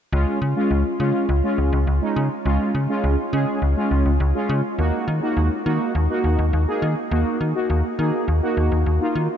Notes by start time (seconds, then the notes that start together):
0.12 C#2 G#3 C#4 F4
0.42 C#3
0.56 G#3 C#4 F4
0.71 C#2
1.00 C#3 G#3 C#4 F4
1.29 C#2
1.44 G#3 C#4 F4
1.58 C#2
1.73 C#2
1.87 C#2
2.02 G#3 C#4 D#4
2.16 C#3
2.45 C#2 G#3 C#4 F4
2.75 C#3
2.89 G#3 C#4 F4
3.04 C#2
3.33 C#3 G#3 C#4 G#4
3.62 C#2
3.77 G#3 C#4 F4
3.91 C#2
4.06 C#2
4.20 C#2
4.35 G#3 C#4 F4
4.49 C#3
4.79 D#2 A#3 D#4 F#4
5.08 D#3
5.22 A#3 D#4 F#4
5.37 D#2
5.66 D#3 A#3 D#4 F#4
5.95 D#2
6.10 A#3 D#4 F#4
6.24 D#2
6.39 D#2
6.53 D#2
6.68 A#3 D#4 G#4
6.82 D#3
7.11 D#2 A#3 D#4 F#4
7.41 D#3
7.55 A#3 D#4 F#4
7.70 D#2
7.99 D#3 A#3 D#4 G#4
8.28 D#2
8.43 A#3 D#4 F#4
8.57 D#2
8.72 D#2
8.86 D#2
9.01 A#3 D#4 F4
9.15 D#3